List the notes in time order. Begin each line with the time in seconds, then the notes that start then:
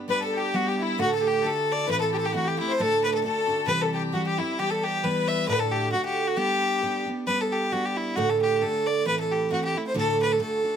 Already playing: G2
0.08 G3 B3 D4 G4 B4
0.20 A4
0.33 G4
0.54 G3 B3 D4 F#4 G4
0.67 G4
0.79 E4
0.98 D2 A2 D3 A3 D4 F#4
1.09 A4
1.15 A4
1.21 G4
1.27 G4
1.42 D3 A3 D4 F#4 A4
1.46 A4
1.72 D5
1.87 A2 E3 A3 C4 E4 B4
2.00 A4
2.13 G4
2.18 A4
2.22 G4
2.32 E3 A3 C4 E4 F#4
2.45 G4
2.59 A3 C4 E4
2.68 C5
2.79 D2 A2 D3 A3 D4 F#4 A4
3.04 B4
3.14 A4
3.23 D3 A3 D4 F#4 A4
3.47 D3 A3 D4 F#4
3.66 C3 E3 G3 C4 G4 B4
3.81 A4
3.94 G4
4.12 E3 G3 C4 F#4 G4
4.26 G4
4.38 G3 C4 E4 G4
4.59 E3 G3 B3 G4
4.70 A4
4.84 G4
5.03 E3 G3 B3 G4 B4
5.27 E5
5.48 D2 A2 D3 A3 D4 F#4 B4
5.59 A4
5.71 G4
5.92 D3 A3 D4 F#4
5.96 F#4
6.05 G4
6.27 F#4
6.36 G3 B3 D4 G4
6.81 G3 B3 D4 G4
7.06 B3 D4 G4
7.27 G3 B3 D4 G4 B4
7.41 A4
7.53 G4
7.71 G3 B3 D4 F#4 G4
7.85 G4
7.97 E4
8.16 D2 A2 D3 A3 D4 F#4
8.30 A4
8.41 G4
8.55 G4
8.61 D3 A3 D4 F#4 A4
8.86 D5
9.05 A2 E3 A3 C4 E4 B4
9.20 A4
9.31 G4
9.49 E3 A3 C4 E4 F#4
9.65 G4
9.74 A3 C4 E4
9.87 C5
9.94 D2 A2 D3 A3 D4 F#4 A4
10.22 B4
10.32 A4
10.38 D3 A3 D4 F#4 A4
10.63 D3 A3 D4 F#4